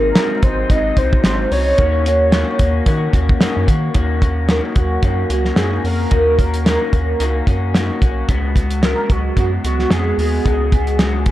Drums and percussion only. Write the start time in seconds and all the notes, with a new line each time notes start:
0.15 snare, closed hi-hat
0.43 kick, closed hi-hat
0.70 kick, closed hi-hat
0.97 kick, closed hi-hat
1.13 kick
1.24 snare, closed hi-hat
1.52 open hi-hat
1.78 kick, closed hi-hat
2.06 closed hi-hat
2.32 snare, closed hi-hat
2.59 kick, closed hi-hat
2.86 kick, closed hi-hat
3.13 kick, closed hi-hat
3.29 kick
3.41 snare, closed hi-hat
3.68 kick, closed hi-hat
3.94 kick, closed hi-hat
4.22 kick, closed hi-hat
4.49 snare, closed hi-hat
4.76 kick, closed hi-hat
5.03 kick, closed hi-hat
5.30 closed hi-hat
5.45 snare
5.56 snare, closed hi-hat
5.85 open hi-hat
6.11 kick, closed hi-hat
6.39 kick, closed hi-hat
6.54 closed hi-hat
6.66 snare, closed hi-hat
6.93 kick, closed hi-hat
7.20 closed hi-hat
7.47 kick, closed hi-hat
7.75 snare, closed hi-hat
8.02 kick, closed hi-hat
8.29 kick, closed hi-hat
8.56 kick, closed hi-hat
8.71 closed hi-hat
8.83 snare, closed hi-hat
9.10 kick, closed hi-hat
9.37 kick, closed hi-hat
9.65 closed hi-hat
9.79 snare
9.91 snare, closed hi-hat
10.19 open hi-hat
10.46 kick, closed hi-hat
10.72 kick, closed hi-hat
10.87 closed hi-hat
10.99 snare, closed hi-hat
11.26 kick, closed hi-hat